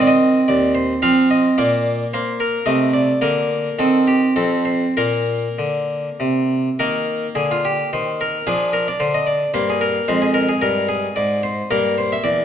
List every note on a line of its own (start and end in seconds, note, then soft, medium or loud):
0.00 0.38 D#3 medium
0.00 1.00 C4 soft
0.00 0.08 D5 medium
0.07 0.48 D#5 medium
0.48 0.92 D#2 medium
0.48 0.71 D5 medium
0.75 0.98 C5 medium
1.02 1.47 F3 medium
1.02 1.54 C4 soft
1.02 1.26 F5 medium
1.31 1.59 D#5 medium
1.58 2.02 A#2 medium
1.58 2.13 A#3 soft
1.58 2.05 D5 medium
2.14 2.57 A#3 medium
2.14 2.36 C5 medium
2.40 2.63 A#4 medium
2.66 3.11 C3 soft
2.66 3.18 A3 soft
2.66 2.90 D#5 medium
2.93 3.18 D5 medium
3.21 3.67 D3 medium
3.21 3.75 A#3 soft
3.21 3.79 A#4 medium
3.79 4.25 D#3 soft
3.79 4.33 C4 soft
3.79 4.03 A4 medium
4.07 4.32 G4 medium
4.36 4.84 F2 soft
4.36 4.93 C4 soft
4.36 4.66 A4 medium
4.65 4.96 C5 medium
4.97 5.46 A#2 soft
4.97 6.76 A#3 soft
4.97 6.50 A#4 medium
5.59 6.08 D3 soft
6.20 6.68 C3 soft
6.79 7.25 D#3 medium
6.79 8.42 A#3 soft
6.79 7.27 A#4 medium
7.35 7.80 D3 medium
7.35 7.49 G#4 medium
7.51 7.64 F4 medium
7.65 7.88 G4 medium
7.93 8.36 D#3 soft
7.93 8.20 C5 medium
8.21 8.47 A#4 medium
8.47 8.90 F3 medium
8.47 9.50 D4 soft
8.47 8.73 G#4 medium
8.73 8.87 A#4 medium
8.88 9.01 D5 medium
9.00 9.43 D3 medium
9.00 9.13 C5 medium
9.14 9.27 D#5 medium
9.27 9.50 D5 medium
9.54 9.97 G2 soft
9.54 10.04 A#3 soft
9.54 9.67 C5 medium
9.70 9.82 G#4 medium
9.81 10.08 A#4 medium
10.08 10.51 F2 medium
10.08 11.67 G#3 soft
10.08 10.21 C5 medium
10.22 10.35 G#4 medium
10.34 10.48 A#4 medium
10.49 10.62 G#4 medium
10.62 11.06 G2 medium
10.62 10.85 A#4 medium
10.89 11.17 G#4 medium
11.16 11.60 G#2 soft
11.16 11.40 D5 medium
11.43 11.67 C5 medium
11.71 12.14 G2 medium
11.71 12.45 A#3 soft
11.71 11.94 A#4 medium
11.98 12.11 C5 medium
12.12 12.25 E5 medium
12.24 12.45 E2 medium
12.24 12.45 D5 medium